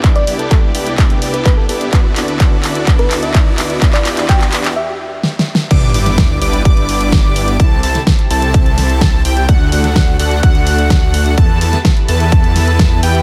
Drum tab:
CC |------------------------------------------------|------------------------------------------------|------------------------------------------------|x-----------------------------------------------|
HH |x--x--o--x--x-----o--x--x--x--o--x--x-----o--x--|x-----o--x--x-----o--x--x--x--o--x--x-----o--x--|x--x--o--x--x--x--o--x--------------------------|x-----o--x--x-----o--x--x--x--o--x--x-----o--x--|
CP |x-----------x-----------x-----------x-----------|x-----x-----x-----x-----x-----x-----x-----x-----|x--x--x--x--x--x--x--x--------------------------|------------------------------------------------|
SD |------------------------------------------------|------------------------------------------------|------------------------------------o---o---o---|---------o--o-----------------------o-----------|
BD |o-----------o-----------o-----------o-----------|o-----------o-----------o-----------o-----------|o-----------o-----------------------------------|o-----------o-----------o-----------o-----------|

CC |------------------------------------------------|------------------------------------------------|------------------------------------------------|
HH |x-----o--x--x--x--o--x--x--x--o--x--x-----o--x--|x-----o--x--x-----o--x--x--x--o--x--x-----o--x--|x-----o--x--x--x--o--x--x--x--o--x--x-----o--x--|
CP |------------------------------------------------|------------------------------------------------|------------------------------------------------|
SD |---------o--o-----------------o-----o-----------|---------o--o-----------------------o-----------|---------o--o-----------------o-----o-----------|
BD |o-----------o-----------o-----------o-----------|o-----------o-----------o-----------o-----------|o-----------o-----------o-----------o-----------|